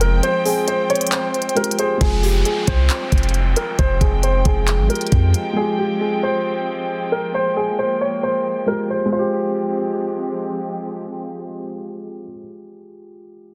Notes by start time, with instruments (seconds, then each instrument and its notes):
Already playing: 808-style bass F1, string section F3 G#3 C4 G5, felt piano G#3 F4 G#4
0.01 grand piano A#4, closed hi-hat
0.23 grand piano C5, closed hi-hat
0.45 grand piano G#4, soft synth lead C5, open hi-hat
0.68 grand piano C5, closed hi-hat
0.90 grand piano C#5, closed hi-hat
0.95 closed hi-hat
1.01 closed hi-hat
1.07 closed hi-hat
1.12 grand piano C5, clap, closed hi-hat
1.34 closed hi-hat
1.42 closed hi-hat
1.49 closed hi-hat
1.55 felt piano G#3 F4 G4, grand piano A#4, closed hi-hat
1.64 closed hi-hat
1.71 closed hi-hat
1.79 soft synth lead G#4, grand piano C5, closed hi-hat
1.97 808-style bass F1, string section F3 G#3 C4 G5, felt piano G#3 F4, grand piano G#4, kick, closed hi-hat, downlifter
2.04 felt piano G#4
2.23 grand piano G4, open hi-hat
2.45 grand piano G#4, closed hi-hat
2.67 808-style bass C2, grand piano C5, kick, closed hi-hat
2.90 clap, closed hi-hat
3.12 808-style bass F1, kick, closed hi-hat
3.18 closed hi-hat
3.23 closed hi-hat
3.29 closed hi-hat
3.34 closed hi-hat
3.56 grand piano A#4, closed hi-hat
3.79 808-style bass F1, grand piano C5, kick, closed hi-hat
4.01 808-style bass F1, grand piano G#4, kick, closed hi-hat
4.23 grand piano C5, closed hi-hat
4.45 808-style bass F1, grand piano G#4, kick, closed hi-hat
4.68 clap, closed hi-hat
4.79 808-style bass G#1
4.88 felt piano G#3 F4 G4, grand piano A#4, closed hi-hat
4.95 closed hi-hat
5.01 closed hi-hat
5.07 closed hi-hat
5.12 808-style bass F2, kick, closed hi-hat
5.34 closed hi-hat
5.53 felt piano G#3 F4, string section C4, grand piano G#4
5.60 felt piano G4
5.79 grand piano G4
6.01 grand piano G#4
6.23 grand piano C5
7.12 grand piano A#4
7.34 string section A#3, grand piano C5
7.57 grand piano G#4
7.79 grand piano C5
8.01 grand piano C#5
8.23 grand piano C5
8.66 felt piano G#3 F4 G4, grand piano A#4
8.90 grand piano C5
9.05 felt piano G#3
9.12 string section F3 G#3 C4 G4, felt piano F4, grand piano C5
9.19 felt piano G4